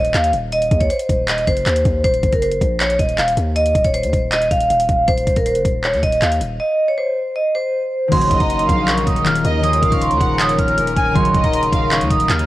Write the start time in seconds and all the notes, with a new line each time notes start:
Already playing: D#1 D#5
0.05 closed hi-hat
0.14 D#2 F5, clap, closed hi-hat
0.24 closed hi-hat
0.33 D#1, closed hi-hat
0.52 D#5, closed hi-hat
0.62 closed hi-hat
0.71 D#2, kick, closed hi-hat
0.80 C#5, kick, closed hi-hat
0.90 C5, closed hi-hat
0.99 closed hi-hat
1.09 D#1, kick, closed hi-hat
1.28 D#5, clap, closed hi-hat
1.38 closed hi-hat
1.47 F#1 C5, kick, closed hi-hat
1.57 closed hi-hat
1.66 D#2, clap, closed hi-hat
1.76 closed hi-hat
1.85 D#2, kick, closed hi-hat
2.04 D#1 C5, kick, closed hi-hat
2.14 closed hi-hat
2.23 F#1, kick, closed hi-hat
2.33 A#4, kick, closed hi-hat
2.42 C5, closed hi-hat
2.51 closed hi-hat
2.61 A#1, kick, closed hi-hat
2.80 C#5, clap, closed hi-hat
2.90 closed hi-hat
2.99 D#1 D#5, kick, closed hi-hat
3.09 closed hi-hat
3.18 D#1 F5, clap, closed hi-hat
3.28 closed hi-hat
3.37 D#2, closed hi-hat
3.56 D#5, closed hi-hat
3.66 closed hi-hat
3.75 D#1, kick, closed hi-hat
3.84 C#5, kick, closed hi-hat
3.94 C5, closed hi-hat
4.03 D#2, closed hi-hat
4.13 D#1, kick, closed hi-hat
4.32 D#5, clap, closed hi-hat
4.42 closed hi-hat
4.51 D#1 F5, kick, closed hi-hat
4.61 closed hi-hat
4.70 D#1, closed hi-hat
4.80 closed hi-hat
4.89 D#1, kick, closed hi-hat
5.08 D#1 C5, kick, closed hi-hat
5.18 closed hi-hat
5.27 D#1, kick, closed hi-hat
5.36 D#1 A#4, kick, closed hi-hat
5.46 C5, closed hi-hat
5.55 F#1, closed hi-hat
5.65 D#1, kick, closed hi-hat
5.84 C#5, clap, closed hi-hat
5.93 D#2, closed hi-hat
6.03 D#1 D#5, kick, closed hi-hat
6.12 closed hi-hat
6.22 D#2 F5, clap, closed hi-hat
6.32 closed hi-hat
6.41 D#1, closed hi-hat
6.60 D#5
6.88 C#5
6.98 C5
7.36 D#5
7.55 C5
8.08 D#3 A#3
8.12 D#1 C#3 D#3 F#3 C#4 D#4 A#4 C6, kick, closed hi-hat, crash
8.16 F#4
8.21 closed hi-hat
8.31 F#1 D#5, kick, closed hi-hat
8.40 A#5, kick, closed hi-hat
8.50 C6, closed hi-hat
8.59 closed hi-hat
8.69 A#1 F5, kick, closed hi-hat
8.88 C#6, clap, closed hi-hat
8.98 closed hi-hat
9.07 D#1 D#6, kick, closed hi-hat
9.16 closed hi-hat
9.23 D#1 D#3 A#3 C#4 F6, clap, closed hi-hat
9.28 F4
9.36 closed hi-hat
9.45 D#2 D#5, closed hi-hat
9.60 C#3 D#3 F3 A#3 C#4 D#6, closed hi-hat
9.66 C#4 C5
9.73 closed hi-hat
9.83 D#1 F5, kick, closed hi-hat
9.92 C#6, kick, closed hi-hat
10.01 C6, closed hi-hat
10.11 D#2, closed hi-hat
10.21 D#1 F#5, kick, closed hi-hat
10.39 D#6, clap, closed hi-hat
10.49 closed hi-hat
10.59 D#1 F6, kick, closed hi-hat
10.68 closed hi-hat
10.78 D#1, closed hi-hat
10.87 closed hi-hat
10.96 D#1 G#5, kick, closed hi-hat
11.11 D#3 A#3
11.15 D#1 C#3 D#3 F#3 D#4 F#4 C6, kick, closed hi-hat
11.20 C#5
11.25 closed hi-hat
11.35 D#1 D#5, kick, closed hi-hat
11.44 A#5, kick, closed hi-hat
11.54 C6, closed hi-hat
11.63 closed hi-hat
11.73 D#1 F5, kick, closed hi-hat
11.91 C#6, clap, closed hi-hat
12.01 D#2, closed hi-hat
12.11 D#1 D#6, kick, closed hi-hat
12.20 closed hi-hat
12.29 D#2 F6, clap, closed hi-hat
12.39 closed hi-hat